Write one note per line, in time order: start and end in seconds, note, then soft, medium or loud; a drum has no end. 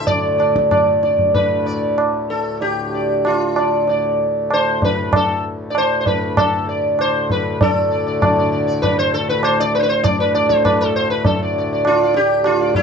0.00 7.59 D2 medium
0.00 7.59 A2 medium
0.07 0.37 D5 loud
0.07 tabla tin medium
0.07 tabla ge medium
0.38 0.68 D5 soft
0.38 tabla na medium
0.56 tabla ke medium
0.71 1.01 D5 soft
0.71 tabla na medium
0.71 tabla ge medium
1.03 1.32 D5 soft
1.03 tabla te medium
1.19 tabla ge medium
1.34 2.33 B4 medium
1.34 tabla tin medium
1.34 tabla ge medium
1.66 1.96 D5 soft
1.98 tabla na medium
2.30 2.60 A4 medium
2.61 3.26 G4 medium
2.61 tabla tin medium
2.94 3.23 D5 soft
3.25 3.85 F4 medium
3.25 tabla na medium
3.56 3.87 D5 soft
3.56 tabla na medium
3.87 4.18 D5 soft
3.87 tabla tin medium
4.51 4.84 C5 medium
4.51 tabla na medium
4.82 5.15 B4 medium
4.82 tabla tin medium
4.82 tabla ge medium
5.13 5.44 A4 medium
5.13 tabla na medium
5.13 tabla ge medium
5.70 5.76 D5 medium
5.75 5.99 C5 medium
5.75 tabla na medium
6.00 6.06 C5 medium
6.06 6.35 B4 medium
6.06 tabla tin medium
6.06 tabla ge medium
6.37 6.66 A4 medium
6.37 tabla na medium
6.37 tabla ge medium
6.69 6.97 D5 soft
6.99 7.31 C5 medium
6.99 tabla na medium
7.30 7.61 B4 medium
7.30 tabla tin medium
7.30 tabla ge medium
7.60 12.83 D2 medium
7.60 12.83 A2 medium
7.60 8.50 A4 medium
7.60 7.90 D5 soft
7.60 tabla tin loud
7.60 tabla ge medium
7.92 8.05 D5 soft
8.07 8.21 D5 soft
8.22 8.37 D5 soft
8.22 tabla na medium
8.22 tabla ge medium
8.38 8.51 D5 soft
8.52 8.66 D5 soft
8.67 8.96 D5 soft
8.82 8.97 B4 medium
8.82 tabla tin medium
8.82 tabla ge medium
8.99 9.13 C5 loud
9.14 9.29 A4 medium
9.29 9.44 B4 medium
9.43 9.60 C5 loud
9.43 tabla na medium
9.60 9.74 D5 loud
9.75 9.79 B4 medium
9.79 9.88 B4 medium
9.79 9.82 C5 medium
9.89 10.03 C5 medium
10.04 10.20 D5 loud
10.04 tabla tin medium
10.04 tabla ge medium
10.20 10.34 B4 medium
10.35 10.49 D5 medium
10.35 tabla na medium
10.49 10.64 C5 medium
10.49 tabla ke medium
10.65 10.79 B4 medium
10.65 tabla na medium
10.65 tabla ge medium
10.81 10.95 A4 medium
10.96 11.10 C5 medium
11.10 11.25 B4 medium
11.25 11.40 A4 medium
11.25 tabla tin medium
11.25 tabla ge medium
11.43 11.57 D5 soft
11.58 11.72 D5 soft
11.73 11.99 D5 soft
11.85 12.16 F4 loud
11.85 tabla na medium
12.03 12.30 D5 soft
12.14 12.45 G4 medium
12.14 tabla te medium
12.44 12.73 F4 loud
12.44 tabla na medium
12.61 12.83 D5 soft
12.75 12.83 E4 medium
12.75 tabla tin medium
12.75 tabla ge medium